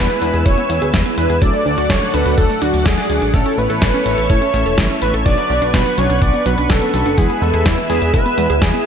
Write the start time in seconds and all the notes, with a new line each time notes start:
Already playing: G#3 B3 E4 B4 E5 G#5 E6
0.10 B3, closed hi-hat, cabasa
0.22 E2 G#3 B3 E4 B4, closed hi-hat, cabasa
0.34 E2 G#4, closed hi-hat, cabasa
0.45 E1 G#3 C#5, kick, closed hi-hat, cabasa
0.58 B3, closed hi-hat, cabasa
0.70 E2 G#3 B3 E4 B4, closed hi-hat, cabasa
0.82 D2 G#4, closed hi-hat, cabasa
0.94 E2 G#3, kick, snare, closed hi-hat, cabasa
1.06 B3, closed hi-hat
1.18 E2 E4 B4, closed hi-hat, cabasa
1.30 E2 G#4, closed hi-hat, cabasa
1.42 D1 F#3 A3 D4 A4 D5 F#5 D6, kick, closed hi-hat, cabasa
1.54 A3, closed hi-hat
1.66 D2 D4, cabasa
1.78 D2 F#4, closed hi-hat, cabasa
1.90 D2 F#3 C#5, kick, snare, closed hi-hat, cabasa
2.02 A3, closed hi-hat, cabasa
2.14 D2 F#3 A3 D4 A4 B4, closed hi-hat, cabasa
2.26 D2 F#4, closed hi-hat, cabasa
2.38 D2 F#3 A4, kick, closed hi-hat, cabasa
2.50 A3, closed hi-hat, cabasa
2.62 D2 F#3 A3 D4 F#4, closed hi-hat, cabasa
2.74 D2 A3, closed hi-hat, cabasa
2.86 D2 G#4 D5, kick, snare, closed hi-hat, cabasa
2.98 D5, snare, closed hi-hat
3.10 D2 F#3, closed hi-hat, cabasa
3.22 A1 D4, closed hi-hat, cabasa
3.34 A1 A3 C#4 E4 A4 C#5 E5 C#6, kick, closed hi-hat, cabasa
3.46 C#4, closed hi-hat
3.58 A1 A3 B4, cabasa
3.70 A1 A4, closed hi-hat, cabasa
3.82 A1 A3, kick, snare, closed hi-hat, cabasa
3.94 C#4, closed hi-hat, cabasa
4.06 A1 A3 C#4 E4 C#5, closed hi-hat, cabasa
4.18 A1 A4, closed hi-hat, cabasa
4.30 A2 A3 C#5, kick, closed hi-hat, cabasa
4.42 C#4, closed hi-hat, cabasa
4.54 A1 A3 C#4 E4 C#5, closed hi-hat, cabasa
4.66 E1 A4, closed hi-hat, cabasa
4.78 A1 A3, kick, snare, closed hi-hat, cabasa
4.90 C#4, closed hi-hat
5.02 A1 A3 B4, closed hi-hat, cabasa
5.14 A1 A4, closed hi-hat, cabasa
5.26 B1 F#3 B3 D4 B4 D5 F#5, kick, closed hi-hat, cabasa
5.38 B3, closed hi-hat
5.50 B1 F#3, cabasa
5.62 B1 D4, closed hi-hat, cabasa
5.74 B1 F#3 B4, kick, snare, closed hi-hat, cabasa
5.86 B3, closed hi-hat, cabasa
5.98 B1 F#3 C#4 D4 B4 C#5, closed hi-hat, cabasa
6.10 B1 D4, closed hi-hat, cabasa
6.22 B1 F#3 D5, kick, closed hi-hat, cabasa
6.34 B3, closed hi-hat, cabasa
6.46 B1 F#3 C#4 D4 B4, closed hi-hat, cabasa
6.58 B1 D4, closed hi-hat, cabasa
6.70 B1 F#3 A4, kick, snare, closed hi-hat, cabasa
6.82 B3, closed hi-hat
6.94 B1 F#3, closed hi-hat, cabasa
7.06 F#1 D4, closed hi-hat, cabasa
7.18 E2 G#3 B3 E4 G#4 B4 E5 G#5 E6, kick, closed hi-hat, cabasa
7.30 B3, closed hi-hat
7.42 E2 G#3 A4, cabasa
7.54 E2 G#4, closed hi-hat, cabasa
7.66 E2 G#3 E4, kick, snare, closed hi-hat, cabasa
7.78 B3, closed hi-hat, cabasa
7.89 E2 G#3 B3 E4 G#4 B4, closed hi-hat, cabasa
8.02 E2 G#4, closed hi-hat, cabasa
8.13 E1 G#3 B4, kick, closed hi-hat, cabasa
8.26 B3, closed hi-hat, cabasa
8.38 E2 G#3 B3 E4 B4, closed hi-hat, cabasa
8.50 D2 G#4, closed hi-hat, cabasa
8.62 E2 G#3 G#4, kick, snare, closed hi-hat, cabasa
8.74 B3, closed hi-hat